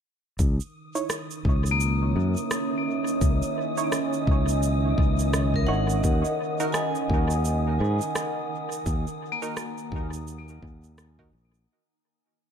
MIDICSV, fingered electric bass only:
0, 0, Header, 1, 2, 480
1, 0, Start_track
1, 0, Tempo, 705882
1, 267, Time_signature, 4, 2, 24, 8
1, 8507, End_track
2, 0, Start_track
2, 0, Title_t, "Fingered electric bass"
2, 0, Program_c, 0, 33
2, 265, Note_on_c, 0, 37, 85
2, 391, Note_off_c, 0, 37, 0
2, 986, Note_on_c, 0, 37, 79
2, 1447, Note_off_c, 0, 37, 0
2, 1467, Note_on_c, 0, 42, 91
2, 1592, Note_off_c, 0, 42, 0
2, 2185, Note_on_c, 0, 37, 87
2, 2311, Note_off_c, 0, 37, 0
2, 2906, Note_on_c, 0, 37, 79
2, 3367, Note_off_c, 0, 37, 0
2, 3386, Note_on_c, 0, 37, 81
2, 3847, Note_off_c, 0, 37, 0
2, 3866, Note_on_c, 0, 32, 81
2, 4083, Note_off_c, 0, 32, 0
2, 4105, Note_on_c, 0, 39, 91
2, 4231, Note_off_c, 0, 39, 0
2, 4825, Note_on_c, 0, 39, 82
2, 5287, Note_off_c, 0, 39, 0
2, 5306, Note_on_c, 0, 44, 98
2, 5432, Note_off_c, 0, 44, 0
2, 6025, Note_on_c, 0, 39, 91
2, 6151, Note_off_c, 0, 39, 0
2, 6744, Note_on_c, 0, 39, 81
2, 7207, Note_off_c, 0, 39, 0
2, 7225, Note_on_c, 0, 39, 88
2, 7687, Note_off_c, 0, 39, 0
2, 7706, Note_on_c, 0, 34, 85
2, 7923, Note_off_c, 0, 34, 0
2, 8507, End_track
0, 0, End_of_file